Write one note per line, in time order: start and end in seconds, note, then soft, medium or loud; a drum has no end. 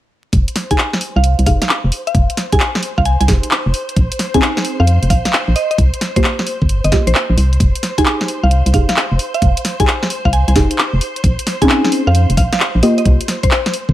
0.33 0.46 F1 loud
0.33 7.59 C5 medium
0.33 kick loud
0.33 closed hi-hat medium
0.48 closed hi-hat medium
0.56 snare medium
0.56 open hi-hat loud
0.71 1.45 D#4 medium
0.71 1.45 G4 medium
0.71 1.45 G#4 medium
0.71 0.76 G#5 medium
0.71 kick medium
0.71 closed hi-hat medium
0.78 0.88 G#5 medium
0.78 clap loud
0.93 snare medium
1.01 open hi-hat loud
1.16 1.35 C2 medium
1.16 1.33 F5 medium
1.24 closed hi-hat medium
1.39 1.45 C2 medium
1.39 closed hi-hat soft
1.46 1.60 F1 medium
1.46 1.63 D#4 medium
1.46 1.63 G4 medium
1.46 1.63 G#4 medium
1.46 1.56 F5 medium
1.46 kick medium
1.46 open hi-hat loud
1.62 1.67 F5 medium
1.62 snare medium
1.62 closed hi-hat medium
1.69 clap loud
1.84 1.91 F1 medium
1.92 open hi-hat loud
2.07 2.24 F5 medium
2.07 closed hi-hat soft
2.15 2.28 F1 loud
2.15 kick loud
2.15 closed hi-hat medium
2.30 closed hi-hat medium
2.37 snare medium
2.37 open hi-hat loud
2.52 2.63 D#4 medium
2.52 2.63 G4 medium
2.52 2.63 G#4 loud
2.52 2.57 G#5 medium
2.52 kick loud
2.52 closed hi-hat medium
2.60 2.70 G#5 medium
2.60 clap loud
2.75 snare medium
2.83 open hi-hat loud
2.98 3.17 C2 medium
2.98 3.04 F5 medium
2.98 kick medium
3.05 3.15 G#5 medium
3.05 closed hi-hat medium
3.20 3.27 C2 medium
3.20 3.25 G#5 medium
3.20 closed hi-hat soft
3.28 3.41 F1 medium
3.28 3.45 D#4 medium
3.28 3.45 G4 medium
3.28 3.45 G#4 loud
3.28 kick loud
3.28 snare medium
3.28 open hi-hat loud
3.43 closed hi-hat medium
3.51 clap loud
3.66 3.73 F1 medium
3.74 open hi-hat loud
3.89 closed hi-hat soft
3.96 4.10 A#1 loud
3.96 kick loud
3.96 closed hi-hat medium
4.12 closed hi-hat medium
4.19 snare medium
4.19 open hi-hat loud
4.34 5.08 C4 medium
4.34 5.08 C#4 medium
4.34 5.08 D#4 medium
4.34 5.08 G#4 medium
4.34 4.39 G#5 medium
4.34 kick medium
4.34 closed hi-hat medium
4.42 4.52 G#5 medium
4.42 clap loud
4.57 snare medium
4.65 open hi-hat medium
4.80 4.99 F2 medium
4.80 4.97 F5 medium
4.87 closed hi-hat medium
5.03 5.09 F1 medium
5.03 closed hi-hat soft
5.10 5.23 A#1 medium
5.10 5.20 F5 medium
5.10 kick loud
5.10 open hi-hat medium
5.25 5.30 F5 medium
5.25 snare medium
5.25 closed hi-hat medium
5.33 clap loud
5.48 5.55 A#1 medium
5.56 5.65 D#5 medium
5.56 open hi-hat medium
5.71 5.76 D#5 medium
5.71 closed hi-hat soft
5.78 5.92 C2 medium
5.78 kick loud
5.78 closed hi-hat medium
5.94 closed hi-hat medium
6.01 snare medium
6.01 open hi-hat loud
6.16 6.27 A#3 medium
6.16 6.27 F4 medium
6.16 6.27 G4 loud
6.16 6.33 C5 medium
6.16 kick loud
6.16 closed hi-hat medium
6.24 clap loud
6.39 snare medium
6.47 open hi-hat medium
6.62 6.80 G1 medium
6.62 kick medium
6.69 closed hi-hat medium
6.84 6.91 G1 medium
6.84 6.89 D#5 medium
6.84 closed hi-hat soft
6.92 7.08 A#3 medium
6.92 7.08 F4 medium
6.92 7.08 G4 loud
6.92 7.02 D#5 medium
6.92 kick loud
6.92 snare medium
6.92 open hi-hat medium
7.07 7.14 A#1 medium
7.07 7.12 C5 medium
7.07 closed hi-hat medium
7.15 7.24 C5 medium
7.15 clap loud
7.30 7.36 A#1 medium
7.37 7.58 C2 medium
7.37 open hi-hat loud
7.53 closed hi-hat soft
7.60 7.73 F1 loud
7.60 13.93 C5 medium
7.60 kick loud
7.60 closed hi-hat medium
7.75 closed hi-hat medium
7.83 snare soft
7.83 open hi-hat loud
7.98 8.72 D#4 medium
7.98 8.72 G4 medium
7.98 8.72 G#4 medium
7.98 8.03 G#5 medium
7.98 kick medium
7.98 closed hi-hat medium
8.06 8.15 G#5 medium
8.06 clap loud
8.21 snare medium
8.28 open hi-hat medium
8.43 8.62 C2 medium
8.43 8.60 F5 medium
8.51 closed hi-hat medium
8.66 8.73 C2 medium
8.66 closed hi-hat soft
8.74 8.87 F1 medium
8.74 8.90 D#4 medium
8.74 8.90 G4 medium
8.74 8.90 G#4 medium
8.74 8.83 F5 medium
8.74 kick loud
8.74 open hi-hat medium
8.89 8.94 F5 medium
8.89 snare medium
8.89 closed hi-hat medium
8.96 clap loud
9.12 9.18 F1 medium
9.19 open hi-hat loud
9.34 9.51 F5 medium
9.34 closed hi-hat soft
9.42 9.55 F1 medium
9.42 kick loud
9.42 closed hi-hat medium
9.57 closed hi-hat medium
9.65 snare medium
9.65 open hi-hat loud
9.80 9.90 D#4 medium
9.80 9.90 G4 medium
9.80 9.90 G#4 loud
9.80 9.85 G#5 medium
9.80 kick loud
9.80 closed hi-hat medium
9.87 9.97 G#5 medium
9.87 clap loud
10.03 snare medium
10.10 open hi-hat loud
10.25 10.44 C2 medium
10.25 10.31 F5 medium
10.25 kick medium
10.33 10.43 G#5 medium
10.33 closed hi-hat medium
10.48 10.55 C2 medium
10.48 10.53 G#5 medium
10.48 closed hi-hat medium
10.56 10.69 F1 medium
10.56 10.72 D#4 medium
10.56 10.72 G4 medium
10.56 10.72 G#4 loud
10.56 kick loud
10.56 snare medium
10.56 open hi-hat loud
10.71 closed hi-hat medium
10.78 clap loud
10.93 11.00 F1 medium
11.01 open hi-hat loud
11.16 closed hi-hat soft
11.24 11.37 A#1 medium
11.24 kick loud
11.24 closed hi-hat medium
11.39 closed hi-hat medium
11.47 snare medium
11.47 open hi-hat loud
11.62 12.36 C4 medium
11.62 12.36 C#4 medium
11.62 12.36 D#4 medium
11.62 12.36 G#4 medium
11.62 11.66 G#5 medium
11.62 kick medium
11.62 closed hi-hat medium
11.69 11.79 G#5 medium
11.69 clap loud
11.85 snare medium
11.92 open hi-hat loud
12.07 12.26 F2 medium
12.07 12.24 F5 medium
12.15 closed hi-hat medium
12.30 12.36 F1 medium
12.30 closed hi-hat medium
12.37 12.51 A#1 medium
12.37 12.47 F5 medium
12.37 kick medium
12.37 open hi-hat loud
12.53 12.57 F5 medium
12.53 snare medium
12.53 closed hi-hat medium
12.60 clap loud
12.75 12.82 A#1 medium
12.83 12.99 A#3 medium
12.83 12.99 F4 medium
12.83 12.99 G4 medium
12.83 12.93 D#5 medium
12.83 open hi-hat loud
12.98 13.03 D#5 medium
12.98 closed hi-hat soft
13.05 13.19 C2 loud
13.05 kick loud
13.05 closed hi-hat medium
13.21 closed hi-hat medium
13.28 snare medium
13.28 open hi-hat loud
13.43 13.60 C5 medium
13.43 kick loud
13.43 closed hi-hat medium
13.51 clap loud
13.66 snare medium
13.66 closed hi-hat soft
13.74 open hi-hat loud
13.89 13.93 G1 medium
13.89 kick medium